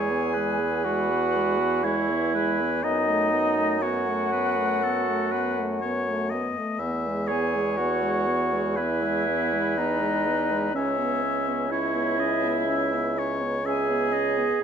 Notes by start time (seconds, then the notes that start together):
Already playing: E2 G#3 G#4 C#5 G#5
0.10 B3
0.34 G#3 B4
0.60 B3
0.85 G#3 F#4 F#5
1.11 B3
1.37 G#3
1.60 B3
1.84 G#3 E4 C#5 E5
2.10 B3
2.35 G#3 B4
2.61 B3
2.83 F#2 B3 D#4 D#5
3.08 A3
3.33 B3
3.58 A3
3.81 B3 F#4 C#5 F#5
4.08 A3
4.32 B3 B4
4.57 A3
4.83 B3 A4
5.09 A3
5.31 B3 B4
5.60 A3
5.82 B3 C#5
6.09 A3
6.30 B3 D#5
6.58 A3
6.78 E2 E5
6.82 B3
7.08 G#3
7.27 G#4 C#5 G#5
7.31 B3
7.56 G#3
7.77 B3 F#4 F#5
8.03 G#3
8.28 B3
8.54 G#3
8.77 B3 E4 B4 E5
9.03 G#3
9.28 B3
9.53 G#3
9.78 B3 D#4 D#5
10.01 G#3
10.27 B3
10.51 G#3
10.74 C#2 C#4 C#5 E5
10.99 B3
11.23 C#4
11.49 B3
11.71 C#4 E4 C#5 E5
11.95 B3
12.19 C#4 D#5
12.43 B3
12.68 C#4 E5
12.93 B3
13.17 C#4 C#5
13.42 B3
13.65 C#4 G#4 E5 G#5
13.91 B3
14.13 C#4 D#5
14.38 B3